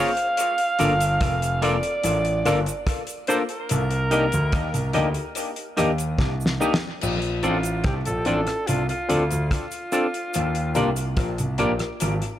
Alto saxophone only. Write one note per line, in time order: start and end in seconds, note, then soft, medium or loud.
0.00 1.65 F5 loud
1.64 2.87 D5 loud
3.28 3.38 C5 loud
3.50 5.12 A#4 loud
7.43 7.82 F4 medium
7.85 7.95 G4 medium
8.06 8.69 A4 loud
8.67 8.88 F4 loud
8.89 9.47 F4 medium
9.51 11.55 F4 medium